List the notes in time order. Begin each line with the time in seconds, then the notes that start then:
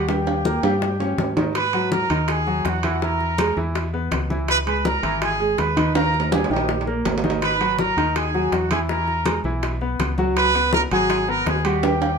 Already playing: D#2
0.09 G3 G4 G5, high bongo, high conga, high timbale
0.27 high bongo, high conga, high timbale
0.45 A#3 A#4, high bongo, high conga
0.63 G2 G3 G4, high conga, high timbale
0.82 high bongo, high conga, low timbale
1.00 C#4 C#5, high conga, low timbale
1.18 G#2, high bongo, low bongo, high conga, low timbale
1.37 D#3 D#4, high bongo, high conga, low timbale
1.55 B4 B5, high bongo, high conga, high timbale
1.73 F#3 F#4, high bongo, high conga, high timbale
1.91 A#4 A#5, high bongo, high conga
2.10 D#2 D#3 D#4, high conga, high timbale
2.28 G#4 G#5, high bongo, high conga, high timbale
2.47 F#3 F#4, high bongo, high conga
2.65 E2 F#4 F#5, high bongo, low bongo, high conga, high timbale
2.83 E3 E4, high bongo, high conga, high timbale
3.02 E3 E4 A#4 A#5, high bongo, high conga
3.20 high bongo, high conga
3.38 G#3 G#4, high bongo, high conga, high timbale
3.56 E2 E3 E4, high conga
3.75 high bongo, high conga, high timbale
3.93 B3 B4, high conga
4.11 C#2, high bongo, low bongo, high conga, high timbale
4.30 E3 E4, high bongo, high conga
4.48 B4 B5, high bongo, high conga, high timbale
4.66 G#3 G#4 B4 B5, high bongo, high conga, high timbale
4.85 A#4 A#5, high bongo, high conga
5.03 G#1 E3 E4, high conga, high timbale
5.22 G#4 G#5, high bongo, high conga, high timbale
5.40 G#3 G#4, high bongo, high conga
5.58 D#2 B4 B5, high bongo, low bongo, high conga, high timbale
5.77 D#3 D#4, high bongo, high conga, high timbale
5.95 D#3 D#4 A#4 A#5, high bongo, high timbale
6.14 high bongo, high conga
6.20 low timbale
6.32 G3 G4 G#4 G#5, high bongo, high conga, high timbale
6.44 low timbale
6.50 A#1 D#3 D#4 G4 G5, high conga
6.57 low timbale
6.69 high bongo, high conga, low timbale
6.81 low timbale
6.87 A#3 A#4, high conga
7.05 G#1, high bongo, low bongo, high conga, low timbale
7.18 low timbale
7.24 D#3 D#4, high bongo, high conga
7.30 low timbale
7.41 B4 B5, high bongo, high conga, high timbale
7.60 F#3 F#4, high bongo, high conga, high timbale
7.78 A#4 A#5, high bongo, high conga
7.97 D#2 D#3 D#4, high conga, high timbale
8.16 G#4 G#5, high bongo, high conga, high timbale
8.34 F#3 F#4, high bongo, high conga
8.52 E2 F#4 F#5, high bongo, low bongo, high conga, high timbale
8.71 E3 E4 G#4 G#5, high bongo, high conga, high timbale
8.89 E3 E4 A#4 A#5, high bongo, high conga
9.08 high bongo, high conga
9.26 G#3 G#4, high bongo, high conga, high timbale
9.44 B1 E3 E4, high conga
9.63 high bongo, high conga, high timbale
9.81 B3 B4, high conga
9.99 C#2, high bongo, low bongo, high conga, high timbale
10.18 F#3 F#4, high bongo, high conga
10.36 B4 B5, high bongo, high conga, high timbale
10.55 B3 B4, high bongo, high conga, high timbale
10.73 A#4 A#5, high bongo, high conga
10.91 G#1 F#3 F#4 G#4 G#5, high conga, high timbale
11.09 high bongo, high conga, high timbale
11.28 B3 A#4 B4 A#5, high bongo, high conga
11.46 D#2 G#4 G#5, high bongo, low bongo, high conga, high timbale, low timbale
11.65 G3 F#4 G4 F#5, high bongo, high timbale
11.83 G3 G4 G5, high bongo, high conga, high timbale
12.01 high bongo, high conga, high timbale